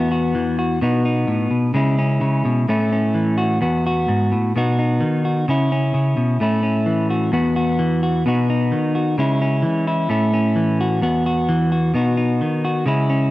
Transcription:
0.00 0.81 E2 medium
0.00 0.79 B3 medium
0.00 0.10 F#4 medium
0.12 0.58 F#4 medium
0.35 0.78 E3 medium
0.59 0.79 F#4 medium
0.81 1.27 B2 medium
0.81 1.72 B3 medium
0.81 1.04 D#4 medium
0.81 1.72 F#4 soft
1.05 1.72 D#4 medium
1.27 1.50 A2 medium
1.51 1.74 B2 medium
1.74 2.20 C#3 medium
1.74 2.65 G#3 medium
1.74 1.97 C#4 medium
1.74 2.68 E4 medium
1.99 2.65 C#4 medium
2.21 2.44 C#3 medium
2.45 2.68 B2 medium
2.68 3.61 A2 medium
2.68 3.59 A3 medium
2.68 2.91 C#4 soft
2.68 3.37 E4 soft
2.92 3.59 C#4 medium
3.14 3.58 E3 medium
3.38 3.58 F#4 medium
3.61 4.07 E2 medium
3.61 4.51 B3 medium
3.61 3.85 F#4 medium
3.87 4.52 F#4 medium
4.08 4.31 G#2 medium
4.32 4.54 A2 medium
4.56 5.01 B2 medium
4.56 5.46 B3 medium
4.56 4.78 D#4 soft
4.56 5.24 F#4 medium
4.79 5.45 D#4 medium
5.01 5.44 D#3 medium
5.25 5.45 F#4 medium
5.48 5.93 C#3 medium
5.48 5.71 C#4 medium
5.48 6.41 E4 medium
5.48 muted clean electric guitar stroke medium
5.72 6.38 C#4 medium
5.94 6.16 C#3 medium
6.17 6.40 B2 medium
6.40 7.33 A2 medium
6.40 7.30 A3 soft
6.40 6.62 C#4 soft
6.40 7.10 E4 soft
6.63 7.30 C#4 medium
6.86 7.30 E3 medium
7.10 7.30 F#4 soft
7.32 8.25 E2 medium
7.32 8.23 B3 medium
7.32 7.55 F#4 medium
7.56 8.02 F#4 medium
7.79 8.22 E3 medium
8.03 8.23 F#4 medium
8.26 8.72 B2 medium
8.26 9.15 B3 soft
8.26 8.49 D#4 soft
8.26 8.94 F#4 medium
8.50 9.15 D#4 medium
8.72 9.15 D#3 medium
8.95 9.15 F#4 medium
9.18 9.64 C#3 medium
9.18 10.07 G#3 soft
9.18 9.40 C#4 medium
9.18 9.86 E4 medium
9.42 10.07 C#4 medium
9.62 10.06 E3 medium
9.87 10.10 E4 medium
10.09 11.01 A2 medium
10.09 10.99 A3 soft
10.09 10.32 C#4 soft
10.09 10.79 E4 medium
10.33 10.99 C#4 medium
10.56 10.99 E3 medium
10.81 11.00 F#4 medium
11.02 11.94 E2 medium
11.02 11.91 B3 medium
11.02 11.25 F#4 medium
11.26 11.71 F#4 medium
11.49 11.91 E3 medium
11.72 11.92 F#4 medium
11.94 12.40 B2 medium
11.94 12.83 B3 soft
11.94 12.16 D#4 medium
11.94 12.63 F#4 medium
12.17 12.83 D#4 medium
12.41 12.84 D#3 medium
12.65 12.84 F#4 medium
12.86 13.31 C#3 medium
12.86 13.31 G#3 medium
12.86 13.08 C#4 medium
12.86 13.31 E4 medium
13.10 13.31 C#4 medium

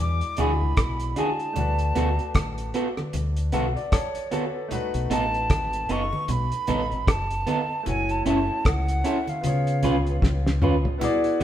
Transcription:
0.00 0.21 E2 medium
0.00 0.33 G#3 medium
0.00 0.34 E4 medium
0.00 0.35 F#4 medium
0.00 0.36 D5 medium
0.00 0.43 D6 loud
0.21 closed hi-hat soft
0.37 0.60 D2 medium
0.37 1.56 G#3 soft
0.37 0.50 D4 medium
0.37 1.56 E4 soft
0.37 1.56 F#4 soft
0.37 0.50 F#4 medium
0.37 0.51 G#4 medium
0.37 1.57 E5 soft
0.37 closed hi-hat medium
0.37 high conga medium
0.37 low conga medium
0.41 1.21 B5 medium
0.62 0.77 C#2 medium
0.77 1.14 B1 medium
0.77 kick loud
0.77 cross-stick loud
0.77 closed hi-hat medium
1.00 closed hi-hat soft
1.16 1.29 D4 medium
1.16 1.29 F#4 medium
1.16 1.29 G#4 medium
1.16 2.76 A5 medium
1.16 closed hi-hat medium
1.16 high conga medium
1.39 closed hi-hat soft
1.53 1.93 D2 medium
1.53 4.66 A3 medium
1.53 4.67 D4 medium
1.53 closed hi-hat medium
1.53 low conga medium
1.57 4.68 F#4 medium
1.57 3.51 B4 medium
1.79 closed hi-hat soft
1.95 2.17 D2 medium
1.95 2.07 B3 medium
1.95 2.08 F#4 medium
1.95 2.08 A4 medium
1.95 closed hi-hat medium
1.95 low conga medium
2.19 closed hi-hat soft
2.34 2.72 A1 medium
2.34 kick loud
2.34 cross-stick loud
2.34 closed hi-hat medium
2.34 high conga medium
2.58 closed hi-hat soft
2.74 2.86 B3 medium
2.74 2.87 F#4 medium
2.74 2.87 A4 medium
2.74 closed hi-hat medium
2.97 cross-stick medium
2.97 high conga medium
3.13 3.51 D2 medium
3.13 closed hi-hat medium
3.13 low conga medium
3.37 closed hi-hat soft
3.52 3.75 B1 medium
3.52 3.65 B3 medium
3.52 3.65 F#4 medium
3.52 3.66 A4 medium
3.52 3.75 E5 medium
3.52 3.90 F#5 medium
3.52 closed hi-hat medium
3.52 high conga soft
3.52 low conga medium
3.76 3.92 D5 medium
3.76 closed hi-hat soft
3.92 4.30 C#5 medium
3.92 4.67 A5 medium
3.92 kick medium
3.92 cross-stick loud
3.92 closed hi-hat medium
4.15 closed hi-hat medium
4.31 4.44 B3 medium
4.31 4.44 F#4 medium
4.31 4.44 A4 medium
4.31 4.54 B4 medium
4.31 closed hi-hat medium
4.31 high conga medium
4.55 4.93 A4 medium
4.68 7.81 A3 medium
4.68 7.82 D#4 medium
4.68 closed hi-hat medium
4.68 low conga medium
4.72 7.83 F#4 medium
4.72 7.84 B4 medium
4.94 5.10 B1 medium
4.94 closed hi-hat soft
5.10 5.47 A1 medium
5.10 5.22 B3 medium
5.10 5.23 D#4 medium
5.10 5.23 A4 medium
5.10 5.93 A5 loud
5.10 closed hi-hat medium
5.10 low conga medium
5.34 closed hi-hat soft
5.50 5.87 G#1 medium
5.50 kick loud
5.50 cross-stick medium
5.50 closed hi-hat medium
5.50 high conga soft
5.73 closed hi-hat soft
5.89 6.11 F#1 medium
5.89 6.01 B3 medium
5.89 6.02 D#4 medium
5.89 6.02 A4 medium
5.89 6.33 C#6 loud
5.89 closed hi-hat medium
6.13 high conga medium
6.28 6.50 B1 loud
6.28 7.12 B5 loud
6.28 closed hi-hat medium
6.28 low conga medium
6.52 closed hi-hat medium
6.67 6.90 A1 medium
6.67 6.80 B3 medium
6.67 6.80 D#4 medium
6.67 6.81 A4 medium
6.67 closed hi-hat medium
6.67 high conga medium
6.67 low conga medium
6.92 7.07 G#1 medium
6.92 closed hi-hat soft
7.07 7.44 F#1 medium
7.07 7.88 A5 medium
7.07 kick loud
7.07 cross-stick loud
7.07 closed hi-hat medium
7.30 closed hi-hat soft
7.47 7.59 B3 medium
7.47 7.59 D#4 medium
7.47 7.59 A4 medium
7.47 closed hi-hat medium
7.47 high conga medium
7.83 9.39 A3 medium
7.83 9.40 E4 medium
7.83 9.41 F#4 medium
7.83 closed hi-hat medium
7.83 low conga medium
7.87 8.23 F#1 medium
7.87 9.42 C#5 medium
7.87 8.12 G#5 loud
8.09 8.26 A5 medium
8.09 closed hi-hat soft
8.26 8.47 F#1 loud
8.26 8.38 C#4 medium
8.26 8.38 E4 medium
8.26 8.38 A4 medium
8.26 8.68 A5 medium
8.26 closed hi-hat medium
8.26 low conga medium
8.65 9.02 C#2 medium
8.65 9.31 F#5 loud
8.65 kick loud
8.65 cross-stick loud
8.65 closed hi-hat medium
8.65 high conga soft
8.88 closed hi-hat soft
9.04 9.16 C#4 medium
9.04 9.17 E4 medium
9.04 9.17 A4 loud
9.04 closed hi-hat medium
9.27 10.47 F5 medium
9.27 closed hi-hat soft
9.27 high conga medium
9.41 9.85 C#3 loud
9.41 10.97 B3 medium
9.41 10.98 F4 medium
9.41 10.99 G#4 medium
9.41 closed hi-hat medium
9.41 low conga medium
9.47 11.00 C#5 medium
9.67 closed hi-hat soft
9.83 10.20 C#2 medium
9.83 9.95 C#4 medium
9.83 9.95 F4 medium
9.83 9.96 B4 medium
9.83 closed hi-hat medium
9.83 high conga medium
9.83 low conga medium
10.07 closed hi-hat soft
10.22 10.59 C#2 medium
10.22 kick loud
10.22 snare medium
10.47 snare medium
10.62 10.84 D2 medium
10.62 10.74 C#4 medium
10.62 10.74 F4 medium
10.62 10.75 B4 medium
10.62 mid tom medium
10.62 high conga medium
10.85 floor tom medium
10.98 11.44 B3 medium
10.98 11.44 E4 medium
10.98 11.44 F#4 medium
10.98 closed hi-hat medium
10.98 low conga medium
11.03 11.44 G#4 medium
11.03 11.44 D5 medium
11.24 closed hi-hat soft
11.40 11.44 G#3 medium
11.40 low conga medium

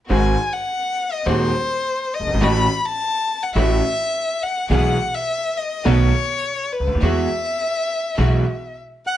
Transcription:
0.09 0.34 G#1 medium
0.09 0.34 G#2 medium
0.09 0.34 D#3 medium
0.09 0.34 G#3 medium
0.09 0.33 C4 medium
0.09 0.34 C4 medium
0.09 0.34 F#4 medium
0.09 0.55 G#5 medium
0.53 1.14 F#5 medium
1.12 1.28 D#5 medium
1.25 1.50 D#1 medium
1.25 1.50 D#2 medium
1.25 1.50 D#3 medium
1.25 1.50 G#3 medium
1.25 1.49 C4 medium
1.25 1.50 C4 medium
1.25 1.50 F#4 medium
1.25 2.16 C5 medium
2.14 2.45 D#5 medium
2.19 2.25 F#1 soft
2.19 2.27 F#1 soft
2.26 2.33 G1 medium
2.26 2.34 G1 medium
2.33 2.40 G#1 medium
2.33 2.41 G#1 medium
2.40 2.65 A1 medium
2.40 2.65 A2 medium
2.40 2.65 E3 medium
2.40 2.65 A3 medium
2.40 2.65 C#4 medium
2.40 2.65 E4 medium
2.40 2.65 F#4 medium
2.40 2.87 B5 loud
2.85 3.44 A5 loud
3.43 3.55 F#5 medium
3.54 3.80 A1 medium
3.54 3.80 A2 medium
3.54 3.80 E3 medium
3.54 3.79 A3 medium
3.54 3.80 A3 medium
3.54 3.80 C#4 medium
3.54 3.79 E4 medium
3.54 3.79 F#4 medium
3.54 3.80 F#4 medium
3.54 4.44 E5 medium
4.43 4.70 F#5 medium
4.69 4.94 B1 medium
4.69 4.95 B1 medium
4.69 4.95 B2 medium
4.69 4.95 E3 medium
4.69 4.95 G#3 medium
4.69 4.94 B3 medium
4.69 4.95 B3 medium
4.69 4.94 E4 medium
4.69 4.94 G#4 medium
4.69 4.95 G#4 medium
4.69 5.16 F#5 medium
5.14 5.59 E5 medium
5.57 5.88 D#5 medium
5.85 6.10 B1 medium
5.85 6.10 B2 medium
5.85 6.10 D#3 medium
5.85 6.10 A3 medium
5.85 6.10 B3 medium
5.85 6.10 D#4 medium
5.85 6.10 F#4 medium
5.85 6.10 A4 medium
5.85 6.74 C#5 medium
6.72 7.03 B4 medium
6.80 6.86 C#2 soft
6.80 6.87 C#2 soft
6.87 6.94 D2 medium
6.87 6.95 D2 medium
6.95 7.02 D#2 medium
7.00 7.26 E2 medium
7.00 7.27 E2 medium
7.00 7.27 E3 medium
7.00 7.25 G#3 medium
7.00 7.26 G#3 medium
7.00 7.27 B3 medium
7.00 7.26 E4 medium
7.00 7.26 F#4 medium
7.00 7.27 F#4 medium
7.00 8.76 E5 medium
8.17 8.42 B1 medium
8.17 8.42 B2 medium
8.17 8.42 E3 medium
8.17 8.42 G#3 medium
8.17 8.42 B3 medium
8.17 8.42 E4 medium
8.17 8.42 F#4 medium
9.06 9.17 F#5 medium

